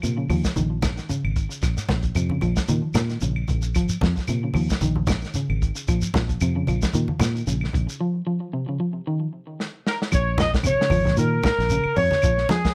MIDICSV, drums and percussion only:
0, 0, Header, 1, 3, 480
1, 0, Start_track
1, 0, Key_signature, -5, "minor"
1, 0, Tempo, 530035
1, 1474, Time_signature, 4, 2, 24, 8
1, 11537, End_track
2, 0, Start_track
2, 0, Title_t, "Shekere"
2, 34, Note_on_c, 9, 82, 80
2, 124, Note_off_c, 9, 82, 0
2, 272, Note_on_c, 9, 82, 27
2, 363, Note_off_c, 9, 82, 0
2, 403, Note_on_c, 9, 82, 59
2, 493, Note_off_c, 9, 82, 0
2, 510, Note_on_c, 9, 82, 64
2, 601, Note_off_c, 9, 82, 0
2, 748, Note_on_c, 9, 82, 72
2, 839, Note_off_c, 9, 82, 0
2, 890, Note_on_c, 9, 82, 26
2, 981, Note_off_c, 9, 82, 0
2, 993, Note_on_c, 9, 82, 80
2, 1084, Note_off_c, 9, 82, 0
2, 1234, Note_on_c, 9, 82, 27
2, 1325, Note_off_c, 9, 82, 0
2, 1368, Note_on_c, 9, 82, 59
2, 1459, Note_off_c, 9, 82, 0
2, 1475, Note_on_c, 9, 82, 61
2, 1565, Note_off_c, 9, 82, 0
2, 1607, Note_on_c, 9, 82, 79
2, 1697, Note_off_c, 9, 82, 0
2, 1853, Note_on_c, 9, 82, 27
2, 1944, Note_off_c, 9, 82, 0
2, 1953, Note_on_c, 9, 82, 82
2, 2043, Note_off_c, 9, 82, 0
2, 2197, Note_on_c, 9, 82, 28
2, 2287, Note_off_c, 9, 82, 0
2, 2321, Note_on_c, 9, 82, 63
2, 2412, Note_off_c, 9, 82, 0
2, 2431, Note_on_c, 9, 82, 64
2, 2521, Note_off_c, 9, 82, 0
2, 2667, Note_on_c, 9, 82, 79
2, 2758, Note_off_c, 9, 82, 0
2, 2805, Note_on_c, 9, 82, 26
2, 2896, Note_off_c, 9, 82, 0
2, 2909, Note_on_c, 9, 82, 81
2, 2999, Note_off_c, 9, 82, 0
2, 3154, Note_on_c, 9, 82, 27
2, 3244, Note_off_c, 9, 82, 0
2, 3280, Note_on_c, 9, 82, 67
2, 3370, Note_off_c, 9, 82, 0
2, 3394, Note_on_c, 9, 82, 60
2, 3485, Note_off_c, 9, 82, 0
2, 3523, Note_on_c, 9, 82, 77
2, 3614, Note_off_c, 9, 82, 0
2, 3773, Note_on_c, 9, 82, 28
2, 3863, Note_off_c, 9, 82, 0
2, 3873, Note_on_c, 9, 82, 79
2, 3963, Note_off_c, 9, 82, 0
2, 4128, Note_on_c, 9, 82, 27
2, 4218, Note_off_c, 9, 82, 0
2, 4251, Note_on_c, 9, 82, 65
2, 4342, Note_off_c, 9, 82, 0
2, 4358, Note_on_c, 9, 82, 63
2, 4448, Note_off_c, 9, 82, 0
2, 4592, Note_on_c, 9, 82, 80
2, 4683, Note_off_c, 9, 82, 0
2, 4723, Note_on_c, 9, 82, 27
2, 4813, Note_off_c, 9, 82, 0
2, 4836, Note_on_c, 9, 82, 83
2, 4927, Note_off_c, 9, 82, 0
2, 5087, Note_on_c, 9, 82, 27
2, 5178, Note_off_c, 9, 82, 0
2, 5216, Note_on_c, 9, 82, 68
2, 5306, Note_off_c, 9, 82, 0
2, 5324, Note_on_c, 9, 82, 59
2, 5414, Note_off_c, 9, 82, 0
2, 5450, Note_on_c, 9, 82, 78
2, 5540, Note_off_c, 9, 82, 0
2, 5703, Note_on_c, 9, 82, 27
2, 5794, Note_off_c, 9, 82, 0
2, 5804, Note_on_c, 9, 82, 86
2, 5895, Note_off_c, 9, 82, 0
2, 6053, Note_on_c, 9, 82, 29
2, 6143, Note_off_c, 9, 82, 0
2, 6177, Note_on_c, 9, 82, 64
2, 6268, Note_off_c, 9, 82, 0
2, 6284, Note_on_c, 9, 82, 64
2, 6375, Note_off_c, 9, 82, 0
2, 6528, Note_on_c, 9, 82, 82
2, 6619, Note_off_c, 9, 82, 0
2, 6666, Note_on_c, 9, 82, 29
2, 6757, Note_off_c, 9, 82, 0
2, 6769, Note_on_c, 9, 82, 79
2, 6859, Note_off_c, 9, 82, 0
2, 7016, Note_on_c, 9, 82, 28
2, 7106, Note_off_c, 9, 82, 0
2, 7149, Note_on_c, 9, 82, 64
2, 7240, Note_off_c, 9, 82, 0
2, 9168, Note_on_c, 9, 82, 86
2, 9259, Note_off_c, 9, 82, 0
2, 9410, Note_on_c, 9, 82, 29
2, 9500, Note_off_c, 9, 82, 0
2, 9642, Note_on_c, 9, 82, 89
2, 9733, Note_off_c, 9, 82, 0
2, 9883, Note_on_c, 9, 82, 31
2, 9973, Note_off_c, 9, 82, 0
2, 10115, Note_on_c, 9, 82, 85
2, 10206, Note_off_c, 9, 82, 0
2, 10349, Note_on_c, 9, 82, 28
2, 10439, Note_off_c, 9, 82, 0
2, 10592, Note_on_c, 9, 82, 89
2, 10682, Note_off_c, 9, 82, 0
2, 10831, Note_on_c, 9, 82, 31
2, 10921, Note_off_c, 9, 82, 0
2, 11074, Note_on_c, 9, 82, 81
2, 11165, Note_off_c, 9, 82, 0
2, 11314, Note_on_c, 9, 82, 30
2, 11404, Note_off_c, 9, 82, 0
2, 11537, End_track
3, 0, Start_track
3, 0, Title_t, "Drums"
3, 19, Note_on_c, 9, 75, 63
3, 33, Note_on_c, 9, 42, 61
3, 110, Note_off_c, 9, 75, 0
3, 123, Note_off_c, 9, 42, 0
3, 268, Note_on_c, 9, 75, 60
3, 270, Note_on_c, 9, 46, 61
3, 271, Note_on_c, 9, 63, 75
3, 358, Note_off_c, 9, 75, 0
3, 360, Note_off_c, 9, 46, 0
3, 361, Note_off_c, 9, 63, 0
3, 405, Note_on_c, 9, 36, 55
3, 406, Note_on_c, 9, 38, 61
3, 495, Note_off_c, 9, 36, 0
3, 496, Note_off_c, 9, 38, 0
3, 507, Note_on_c, 9, 63, 75
3, 509, Note_on_c, 9, 42, 63
3, 597, Note_off_c, 9, 63, 0
3, 599, Note_off_c, 9, 42, 0
3, 746, Note_on_c, 9, 42, 44
3, 746, Note_on_c, 9, 63, 92
3, 749, Note_on_c, 9, 75, 61
3, 751, Note_on_c, 9, 38, 63
3, 753, Note_on_c, 9, 36, 60
3, 837, Note_off_c, 9, 42, 0
3, 837, Note_off_c, 9, 63, 0
3, 839, Note_off_c, 9, 75, 0
3, 841, Note_off_c, 9, 38, 0
3, 843, Note_off_c, 9, 36, 0
3, 881, Note_on_c, 9, 42, 44
3, 886, Note_on_c, 9, 38, 24
3, 972, Note_off_c, 9, 42, 0
3, 976, Note_off_c, 9, 38, 0
3, 995, Note_on_c, 9, 42, 61
3, 1086, Note_off_c, 9, 42, 0
3, 1129, Note_on_c, 9, 75, 59
3, 1219, Note_off_c, 9, 75, 0
3, 1230, Note_on_c, 9, 42, 42
3, 1234, Note_on_c, 9, 36, 59
3, 1320, Note_off_c, 9, 42, 0
3, 1325, Note_off_c, 9, 36, 0
3, 1366, Note_on_c, 9, 42, 46
3, 1457, Note_off_c, 9, 42, 0
3, 1464, Note_on_c, 9, 42, 64
3, 1469, Note_on_c, 9, 38, 25
3, 1474, Note_on_c, 9, 36, 84
3, 1482, Note_on_c, 9, 75, 55
3, 1555, Note_off_c, 9, 42, 0
3, 1559, Note_off_c, 9, 38, 0
3, 1564, Note_off_c, 9, 36, 0
3, 1573, Note_off_c, 9, 75, 0
3, 1602, Note_on_c, 9, 38, 27
3, 1693, Note_off_c, 9, 38, 0
3, 1708, Note_on_c, 9, 63, 86
3, 1710, Note_on_c, 9, 42, 44
3, 1714, Note_on_c, 9, 36, 65
3, 1714, Note_on_c, 9, 38, 68
3, 1799, Note_off_c, 9, 63, 0
3, 1800, Note_off_c, 9, 42, 0
3, 1804, Note_off_c, 9, 36, 0
3, 1805, Note_off_c, 9, 38, 0
3, 1834, Note_on_c, 9, 42, 49
3, 1845, Note_on_c, 9, 36, 64
3, 1925, Note_off_c, 9, 42, 0
3, 1936, Note_off_c, 9, 36, 0
3, 1944, Note_on_c, 9, 42, 55
3, 1955, Note_on_c, 9, 75, 67
3, 2035, Note_off_c, 9, 42, 0
3, 2046, Note_off_c, 9, 75, 0
3, 2078, Note_on_c, 9, 63, 65
3, 2169, Note_off_c, 9, 63, 0
3, 2185, Note_on_c, 9, 63, 77
3, 2190, Note_on_c, 9, 42, 45
3, 2192, Note_on_c, 9, 75, 61
3, 2275, Note_off_c, 9, 63, 0
3, 2281, Note_off_c, 9, 42, 0
3, 2282, Note_off_c, 9, 75, 0
3, 2321, Note_on_c, 9, 42, 46
3, 2326, Note_on_c, 9, 36, 56
3, 2326, Note_on_c, 9, 38, 64
3, 2412, Note_off_c, 9, 42, 0
3, 2416, Note_off_c, 9, 38, 0
3, 2417, Note_off_c, 9, 36, 0
3, 2427, Note_on_c, 9, 42, 67
3, 2431, Note_on_c, 9, 63, 73
3, 2517, Note_off_c, 9, 42, 0
3, 2521, Note_off_c, 9, 63, 0
3, 2664, Note_on_c, 9, 75, 59
3, 2672, Note_on_c, 9, 42, 53
3, 2672, Note_on_c, 9, 63, 93
3, 2676, Note_on_c, 9, 38, 64
3, 2755, Note_off_c, 9, 75, 0
3, 2762, Note_off_c, 9, 42, 0
3, 2763, Note_off_c, 9, 63, 0
3, 2767, Note_off_c, 9, 38, 0
3, 2803, Note_on_c, 9, 42, 50
3, 2807, Note_on_c, 9, 38, 25
3, 2893, Note_off_c, 9, 42, 0
3, 2898, Note_off_c, 9, 38, 0
3, 2917, Note_on_c, 9, 42, 64
3, 3008, Note_off_c, 9, 42, 0
3, 3044, Note_on_c, 9, 75, 61
3, 3134, Note_off_c, 9, 75, 0
3, 3150, Note_on_c, 9, 63, 65
3, 3163, Note_on_c, 9, 36, 55
3, 3164, Note_on_c, 9, 42, 47
3, 3241, Note_off_c, 9, 63, 0
3, 3254, Note_off_c, 9, 36, 0
3, 3254, Note_off_c, 9, 42, 0
3, 3392, Note_on_c, 9, 75, 62
3, 3405, Note_on_c, 9, 36, 82
3, 3408, Note_on_c, 9, 42, 66
3, 3483, Note_off_c, 9, 75, 0
3, 3496, Note_off_c, 9, 36, 0
3, 3498, Note_off_c, 9, 42, 0
3, 3634, Note_on_c, 9, 63, 89
3, 3648, Note_on_c, 9, 36, 66
3, 3652, Note_on_c, 9, 42, 51
3, 3657, Note_on_c, 9, 38, 65
3, 3724, Note_off_c, 9, 63, 0
3, 3738, Note_off_c, 9, 36, 0
3, 3743, Note_off_c, 9, 42, 0
3, 3748, Note_off_c, 9, 38, 0
3, 3778, Note_on_c, 9, 36, 56
3, 3790, Note_on_c, 9, 38, 24
3, 3869, Note_off_c, 9, 36, 0
3, 3874, Note_on_c, 9, 75, 67
3, 3881, Note_off_c, 9, 38, 0
3, 3888, Note_on_c, 9, 42, 67
3, 3964, Note_off_c, 9, 75, 0
3, 3979, Note_off_c, 9, 42, 0
3, 4108, Note_on_c, 9, 63, 77
3, 4117, Note_on_c, 9, 75, 61
3, 4132, Note_on_c, 9, 46, 63
3, 4199, Note_off_c, 9, 63, 0
3, 4207, Note_off_c, 9, 75, 0
3, 4222, Note_off_c, 9, 46, 0
3, 4260, Note_on_c, 9, 36, 57
3, 4271, Note_on_c, 9, 38, 67
3, 4351, Note_off_c, 9, 36, 0
3, 4356, Note_on_c, 9, 63, 81
3, 4362, Note_off_c, 9, 38, 0
3, 4381, Note_on_c, 9, 42, 69
3, 4447, Note_off_c, 9, 63, 0
3, 4472, Note_off_c, 9, 42, 0
3, 4488, Note_on_c, 9, 63, 71
3, 4579, Note_off_c, 9, 63, 0
3, 4592, Note_on_c, 9, 63, 97
3, 4604, Note_on_c, 9, 75, 65
3, 4610, Note_on_c, 9, 36, 62
3, 4616, Note_on_c, 9, 42, 50
3, 4620, Note_on_c, 9, 38, 72
3, 4683, Note_off_c, 9, 63, 0
3, 4695, Note_off_c, 9, 75, 0
3, 4700, Note_off_c, 9, 36, 0
3, 4706, Note_off_c, 9, 42, 0
3, 4711, Note_off_c, 9, 38, 0
3, 4751, Note_on_c, 9, 42, 50
3, 4755, Note_on_c, 9, 38, 27
3, 4841, Note_off_c, 9, 42, 0
3, 4846, Note_off_c, 9, 38, 0
3, 4854, Note_on_c, 9, 42, 61
3, 4944, Note_off_c, 9, 42, 0
3, 4979, Note_on_c, 9, 75, 60
3, 5070, Note_off_c, 9, 75, 0
3, 5090, Note_on_c, 9, 36, 60
3, 5095, Note_on_c, 9, 42, 47
3, 5180, Note_off_c, 9, 36, 0
3, 5186, Note_off_c, 9, 42, 0
3, 5224, Note_on_c, 9, 42, 47
3, 5314, Note_off_c, 9, 42, 0
3, 5329, Note_on_c, 9, 36, 90
3, 5329, Note_on_c, 9, 75, 60
3, 5333, Note_on_c, 9, 42, 59
3, 5419, Note_off_c, 9, 36, 0
3, 5420, Note_off_c, 9, 75, 0
3, 5424, Note_off_c, 9, 42, 0
3, 5560, Note_on_c, 9, 63, 93
3, 5570, Note_on_c, 9, 36, 65
3, 5571, Note_on_c, 9, 42, 48
3, 5576, Note_on_c, 9, 38, 69
3, 5650, Note_off_c, 9, 63, 0
3, 5661, Note_off_c, 9, 36, 0
3, 5662, Note_off_c, 9, 42, 0
3, 5666, Note_off_c, 9, 38, 0
3, 5697, Note_on_c, 9, 42, 48
3, 5700, Note_on_c, 9, 36, 65
3, 5787, Note_off_c, 9, 42, 0
3, 5791, Note_off_c, 9, 36, 0
3, 5804, Note_on_c, 9, 42, 60
3, 5808, Note_on_c, 9, 75, 65
3, 5895, Note_off_c, 9, 42, 0
3, 5899, Note_off_c, 9, 75, 0
3, 6042, Note_on_c, 9, 63, 76
3, 6050, Note_on_c, 9, 42, 48
3, 6053, Note_on_c, 9, 75, 61
3, 6132, Note_off_c, 9, 63, 0
3, 6140, Note_off_c, 9, 42, 0
3, 6144, Note_off_c, 9, 75, 0
3, 6181, Note_on_c, 9, 36, 58
3, 6182, Note_on_c, 9, 42, 47
3, 6187, Note_on_c, 9, 38, 66
3, 6272, Note_off_c, 9, 36, 0
3, 6273, Note_off_c, 9, 42, 0
3, 6277, Note_off_c, 9, 38, 0
3, 6279, Note_on_c, 9, 63, 80
3, 6291, Note_on_c, 9, 42, 64
3, 6370, Note_off_c, 9, 63, 0
3, 6382, Note_off_c, 9, 42, 0
3, 6412, Note_on_c, 9, 63, 70
3, 6502, Note_off_c, 9, 63, 0
3, 6516, Note_on_c, 9, 63, 97
3, 6527, Note_on_c, 9, 75, 62
3, 6537, Note_on_c, 9, 42, 51
3, 6542, Note_on_c, 9, 38, 68
3, 6607, Note_off_c, 9, 63, 0
3, 6618, Note_off_c, 9, 75, 0
3, 6628, Note_off_c, 9, 42, 0
3, 6632, Note_off_c, 9, 38, 0
3, 6669, Note_on_c, 9, 42, 48
3, 6760, Note_off_c, 9, 42, 0
3, 6776, Note_on_c, 9, 42, 65
3, 6867, Note_off_c, 9, 42, 0
3, 6894, Note_on_c, 9, 75, 58
3, 6918, Note_on_c, 9, 38, 28
3, 6984, Note_off_c, 9, 75, 0
3, 7002, Note_on_c, 9, 63, 62
3, 7009, Note_off_c, 9, 38, 0
3, 7012, Note_on_c, 9, 36, 64
3, 7019, Note_on_c, 9, 42, 46
3, 7092, Note_off_c, 9, 63, 0
3, 7103, Note_off_c, 9, 36, 0
3, 7109, Note_off_c, 9, 42, 0
3, 8694, Note_on_c, 9, 38, 43
3, 8785, Note_off_c, 9, 38, 0
3, 8934, Note_on_c, 9, 38, 65
3, 9025, Note_off_c, 9, 38, 0
3, 9072, Note_on_c, 9, 38, 64
3, 9163, Note_off_c, 9, 38, 0
3, 9164, Note_on_c, 9, 75, 66
3, 9173, Note_on_c, 9, 36, 88
3, 9179, Note_on_c, 9, 42, 65
3, 9254, Note_off_c, 9, 75, 0
3, 9264, Note_off_c, 9, 36, 0
3, 9270, Note_off_c, 9, 42, 0
3, 9399, Note_on_c, 9, 63, 99
3, 9399, Note_on_c, 9, 64, 77
3, 9411, Note_on_c, 9, 42, 53
3, 9416, Note_on_c, 9, 38, 69
3, 9489, Note_off_c, 9, 63, 0
3, 9489, Note_off_c, 9, 64, 0
3, 9502, Note_off_c, 9, 42, 0
3, 9506, Note_off_c, 9, 38, 0
3, 9543, Note_on_c, 9, 36, 67
3, 9546, Note_on_c, 9, 42, 49
3, 9550, Note_on_c, 9, 38, 69
3, 9629, Note_on_c, 9, 63, 72
3, 9633, Note_off_c, 9, 36, 0
3, 9633, Note_on_c, 9, 75, 67
3, 9636, Note_off_c, 9, 42, 0
3, 9641, Note_off_c, 9, 38, 0
3, 9655, Note_on_c, 9, 42, 65
3, 9719, Note_off_c, 9, 63, 0
3, 9724, Note_off_c, 9, 75, 0
3, 9746, Note_off_c, 9, 42, 0
3, 9791, Note_on_c, 9, 38, 66
3, 9870, Note_on_c, 9, 63, 83
3, 9870, Note_on_c, 9, 64, 78
3, 9878, Note_on_c, 9, 75, 66
3, 9881, Note_off_c, 9, 38, 0
3, 9892, Note_on_c, 9, 46, 62
3, 9961, Note_off_c, 9, 63, 0
3, 9961, Note_off_c, 9, 64, 0
3, 9968, Note_off_c, 9, 75, 0
3, 9982, Note_off_c, 9, 46, 0
3, 10006, Note_on_c, 9, 63, 74
3, 10023, Note_on_c, 9, 36, 66
3, 10027, Note_on_c, 9, 42, 47
3, 10031, Note_on_c, 9, 38, 27
3, 10097, Note_off_c, 9, 63, 0
3, 10113, Note_off_c, 9, 36, 0
3, 10117, Note_off_c, 9, 42, 0
3, 10122, Note_off_c, 9, 38, 0
3, 10137, Note_on_c, 9, 42, 72
3, 10227, Note_off_c, 9, 42, 0
3, 10354, Note_on_c, 9, 75, 63
3, 10355, Note_on_c, 9, 63, 98
3, 10368, Note_on_c, 9, 36, 68
3, 10372, Note_on_c, 9, 42, 50
3, 10376, Note_on_c, 9, 38, 73
3, 10445, Note_off_c, 9, 75, 0
3, 10446, Note_off_c, 9, 63, 0
3, 10458, Note_off_c, 9, 36, 0
3, 10462, Note_off_c, 9, 42, 0
3, 10467, Note_off_c, 9, 38, 0
3, 10506, Note_on_c, 9, 42, 53
3, 10511, Note_on_c, 9, 38, 28
3, 10597, Note_off_c, 9, 42, 0
3, 10601, Note_off_c, 9, 38, 0
3, 10608, Note_on_c, 9, 42, 71
3, 10699, Note_off_c, 9, 42, 0
3, 10719, Note_on_c, 9, 75, 60
3, 10810, Note_off_c, 9, 75, 0
3, 10836, Note_on_c, 9, 64, 84
3, 10842, Note_on_c, 9, 46, 61
3, 10927, Note_off_c, 9, 64, 0
3, 10933, Note_off_c, 9, 46, 0
3, 10965, Note_on_c, 9, 63, 83
3, 10977, Note_on_c, 9, 38, 29
3, 11056, Note_off_c, 9, 63, 0
3, 11067, Note_off_c, 9, 38, 0
3, 11067, Note_on_c, 9, 75, 66
3, 11078, Note_on_c, 9, 42, 72
3, 11081, Note_on_c, 9, 36, 99
3, 11157, Note_off_c, 9, 75, 0
3, 11169, Note_off_c, 9, 42, 0
3, 11171, Note_off_c, 9, 36, 0
3, 11209, Note_on_c, 9, 38, 31
3, 11299, Note_off_c, 9, 38, 0
3, 11312, Note_on_c, 9, 63, 97
3, 11318, Note_on_c, 9, 42, 56
3, 11323, Note_on_c, 9, 38, 73
3, 11402, Note_off_c, 9, 63, 0
3, 11409, Note_off_c, 9, 42, 0
3, 11413, Note_off_c, 9, 38, 0
3, 11453, Note_on_c, 9, 36, 67
3, 11454, Note_on_c, 9, 42, 57
3, 11458, Note_on_c, 9, 38, 71
3, 11537, Note_off_c, 9, 36, 0
3, 11537, Note_off_c, 9, 38, 0
3, 11537, Note_off_c, 9, 42, 0
3, 11537, End_track
0, 0, End_of_file